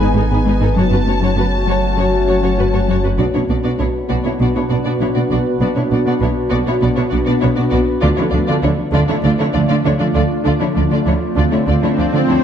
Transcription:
Already playing: G#1 B3 D#4 G#4 B4 G#5
0.00 G#2 G#3 D#4
0.14 G#2 D#4 G#4 A4
0.30 G#2 B3 D#4 B4
0.44 G#2 G#3 D#4 B4
0.60 G#2 D#4 G#4 A4
0.74 F#1 F#2 F#3 A3 C#4 F#4 C#5 A5
0.90 F#2 C#4 F#4 B4
1.05 F#2 A3 F#4 C#5
1.20 F#2 F#3 F#4 C#5
1.35 F#2 A3 F#4
1.39 B4
1.66 F#2 F#3 F#4 C#5
1.97 F#2 F#3 F#4 C#5
2.27 F#2 F#4 C#5
2.42 F#2 F#3 F#4 C#5
2.58 F#2 F#4 B4
2.73 F#2 A3 F#4 C#5
2.88 F#2 F#3 F#4 C#5
3.03 F#2 F#4 B4
3.18 B1 B2 B3 D4 F#4 B4 D5
3.34 B2 B3 D4 E4 C#5
3.49 B1 B2 B3 D4 F#4 D5
3.64 B2 B3 D4 F#4 D5
3.79 B1 B2 B3 D4 E4 C#5
4.09 B1 B2 B3 D4 F#4 D5
4.25 B2 B3 D4 E4 F#4 C#5
4.40 B1 B2 B3 D4 F#4 D5
4.55 B2 B3 D4 E4 F#4 C#5
4.70 B1 B2 B3 D4 F#4 D5
4.85 B2 B3 D4 F#4 D5
5.00 B1 B2 B3 D4 E4 C#5
5.15 B2 B3 D4 F#4 D5
5.30 B1 B2 B3 D4 F#4 D5
5.61 B1 B2 B3 D4 F#4 D5
5.75 B2 B3 D4 E4 C#5
5.91 B1 B2 B3 D4 F#4 D5
6.06 B2 B3 D4 F#4 D5
6.20 B1 B2 B3 D4 E4 C#5
6.50 B1 B2 B3 D4 F#4 D5
6.66 B2 B3 D4 E4 F#4 C#5
6.81 B1 B2 B3 D4 F#4 D5
6.96 B2 B3 D4 E4 F#4 C#5
7.10 B1 B2 B3 D4 F#4 D5
7.26 B2 B3 D4 F#4 D5
7.41 B1 B2 B3 D4 E4 C#5
7.56 B2 B3 D4 F#4 D5
7.71 B1 B2 B3 D4 F#4 D5
8.01 D2 D3 A3 D4 F4 D5
8.17 D3 F3 A3 D4 E4 C#5
8.31 D2 D3 F3 A3 D4 F4 D5
8.47 D3 A3 D4 F4 D5
8.63 D2 D3 F3 A3 D4 E4 C#5
8.92 D2 D3 A3 D4 F4 D5
9.08 D3 A3 D4 E4 C#5
9.24 D2 D3 A3 D4 F4 D5
9.39 D3 A3 D4 E4 C#5
9.53 D2 D3 F3 A3 D4 F4 D5
9.68 D3 A3 D4 F4 D5
9.85 D2 D3 F3 A3 D4 E4 C#5
9.99 D3 F3 A3 D4 F4 D5
10.14 D2 D3 A3 D4 F4 D5
10.44 D2 D3 A3 D4 F4 D5, swell
10.60 D3 F3 A3 D4 E4 C#5
10.75 D2 D3 F3 A3 D4 F4 D5
10.91 D3 A3 D4 F4 D5
11.06 D2 D3 F3 A3 D4 E4 C#5
11.35 D2 D3 A3 D4 F4 D5
11.51 D3 A3 D4 E4 C#5
11.66 D2 D3 A3 D4 F4 D5
11.82 D3 A3 D4 E4 C#5
11.97 D2 D3 F3 A3 D4 F4 D5
12.12 D3 A3 D4 F4 D5
12.28 D2 D3 F3 A3 D4 E4 C#5

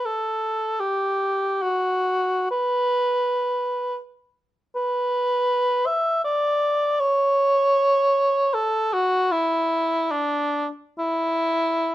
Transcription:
0.05 A4
0.80 G4
1.62 F#4
2.51 B4
4.76 B4
5.86 E5
6.24 D5
7.00 C#5
8.54 A4
8.93 F#4
9.32 E4
10.11 D4
10.99 E4

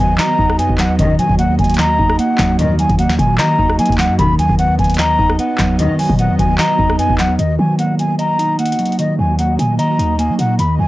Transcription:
Already playing: D#3 F#3 B3 F#4 D#5
0.00 D#2 G#5
0.18 D#5 A#5, snare, clap, closed hi-hat
0.39 D#2 D#4, kick
0.50 cross-stick
0.59 F#2 B3 G#5, closed hi-hat
0.70 D#2, kick
0.78 F#3 F#5, snare, clap, closed hi-hat
0.99 A#1 D#2 F#2 D#3 A#3 D#5, kick, closed hi-hat
1.19 F#3 G#5, closed hi-hat
1.30 D#2, kick
1.39 A#3 F#5, closed hi-hat
1.59 D#2 G#5, kick, closed hi-hat
1.64 closed hi-hat
1.70 closed hi-hat
1.74 clap, closed hi-hat
1.79 D#5 A#5, snare
1.99 D#2 D#4, kick
2.10 cross-stick
2.19 A#3 F#5, closed hi-hat
2.38 D#2 F#3, kick, snare, clap, closed hi-hat
2.59 A#1 F#2 D#3 D#5, closed hi-hat
2.79 F#3 G#5, closed hi-hat
2.89 D#2, kick, closed hi-hat
2.99 A#3 F#5, closed hi-hat
3.09 snare
3.19 A#2 G#5, kick, closed hi-hat
3.38 D#3 D#5 A#5, snare, clap, closed hi-hat
3.59 D#2 D#4, kick
3.70 cross-stick
3.79 F#3 A#3 G#5, closed hi-hat
3.86 D#2, kick, closed hi-hat
3.92 closed hi-hat
3.98 F#3 F#5, snare, clap, closed hi-hat
4.09 F#2
4.19 B1 D#2 F#2 D#3 B3 F#4 D#5 B5, kick, closed hi-hat
4.39 F#3 G#5, closed hi-hat
4.49 D#2, kick
4.59 B3 F#5, closed hi-hat
4.79 D#2 G#5, kick, closed hi-hat
4.84 closed hi-hat
4.90 closed hi-hat
4.94 clap, closed hi-hat
4.99 D#5 A#5, snare, closed hi-hat
5.19 D#2 D#4, kick
5.30 cross-stick
5.39 B3 F#5, closed hi-hat
5.58 D#2 F#3, kick, snare, clap, closed hi-hat
5.79 B1 F#2 D#3 D#5, closed hi-hat
5.99 F#3 G#5, open hi-hat
6.09 A#2, kick
6.19 B3 F#5, closed hi-hat
6.30 E2
6.39 D#2 G#5, kick, closed hi-hat
6.58 D#5 A#5, snare, clap, closed hi-hat
6.79 D#2 D#4, kick
6.90 cross-stick
6.99 F#2 B3 G#5, closed hi-hat
7.10 D#2, kick
7.18 F#3 F#5, snare, clap, closed hi-hat
7.39 D#2 D#3 A#3 F#4 D#5, closed hi-hat
7.59 D#3 F#3 G#5
7.79 A#3 F#5, closed hi-hat
7.99 G#5, closed hi-hat
8.19 D#5 A#5, closed hi-hat
8.39 D#4, closed hi-hat
8.59 A#3 F#5, closed hi-hat
8.66 closed hi-hat
8.72 closed hi-hat
8.79 F#3, closed hi-hat
8.86 closed hi-hat
8.92 closed hi-hat
8.99 D#3 D#5, closed hi-hat
9.19 D#2 F#3 G#5
9.39 A#3 F#5, closed hi-hat
9.59 A#2 G#5, closed hi-hat
9.78 D#3 D#5 A#5, closed hi-hat
9.99 D#2 D#4, closed hi-hat
10.19 A#3 G#5, closed hi-hat
10.30 F#3
10.39 A#2 F#3 F#5, closed hi-hat
10.59 D#2 D#3 B5, closed hi-hat
10.79 D#2 F#3 G#5

